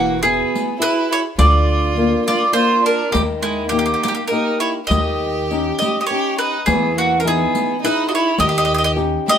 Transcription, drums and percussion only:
0.23 riq soft
0.55 riq soft
1.39 riq medium
1.96 riq soft
2.28 riq soft
3.14 riq medium
3.74 riq soft
4.05 riq soft
4.32 riq soft
4.91 riq medium
5.51 riq soft
5.82 riq soft
6.68 riq medium
7.25 riq soft
7.55 riq soft
8.38 riq medium
8.97 riq soft
9.28 riq soft

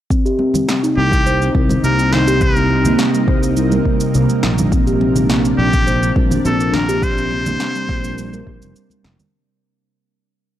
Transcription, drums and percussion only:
0.10 kick loud
0.10 shaker soft
0.26 shaker soft
0.39 muted conga soft
0.54 high conga medium
0.54 low conga medium
0.54 shaker medium
0.69 snare medium
0.69 shaker soft
0.84 shaker soft
1.12 kick loud
1.12 shaker medium
1.26 muted conga medium
1.26 shaker medium
1.42 shaker soft
1.55 kick loud
1.55 high conga medium
1.69 muted conga medium
1.69 low conga medium
1.69 shaker medium
1.84 high conga soft
1.84 shaker medium
1.99 shaker soft
2.13 snare medium
2.13 low conga medium
2.28 shaker medium
2.41 kick loud
2.41 shaker soft
2.56 shaker soft
2.70 muted conga soft
2.85 high conga medium
2.85 low conga medium
2.85 shaker medium
2.99 snare medium
2.99 shaker medium
3.14 shaker soft
3.28 kick loud
3.43 shaker medium
3.57 shaker medium
3.72 high conga medium
3.72 shaker soft
3.86 kick medium
4.00 shaker medium
4.15 shaker medium
4.29 high conga medium
4.29 shaker soft
4.43 snare medium
4.58 high conga medium
4.58 low conga medium
4.58 shaker medium
4.72 kick loud
4.72 shaker medium
4.87 shaker soft
5.01 muted conga soft
5.16 high conga medium
5.16 low conga medium
5.16 shaker medium
5.30 snare medium
5.30 shaker soft
5.45 shaker soft
5.73 kick loud
5.73 shaker medium
5.87 muted conga medium
5.87 shaker medium
6.03 shaker soft
6.16 kick loud
6.16 high conga medium
6.31 muted conga medium
6.31 low conga medium
6.31 shaker medium
6.44 high conga soft
6.44 shaker medium
6.60 shaker soft
6.73 snare medium
6.73 low conga medium
6.89 shaker medium
7.02 kick loud
7.02 shaker medium
7.18 shaker soft
7.31 muted conga soft
7.46 high conga medium
7.46 low conga medium
7.46 shaker medium
7.60 snare medium
7.60 shaker medium
7.75 shaker soft
7.89 kick loud
8.04 shaker medium
8.18 shaker medium
8.33 high conga medium
8.33 shaker soft
8.47 kick medium
8.62 shaker medium
8.75 high conga soft
8.75 shaker medium
8.90 high conga medium
8.90 shaker soft
9.04 snare medium
9.19 high conga medium
9.19 low conga medium
9.19 shaker medium

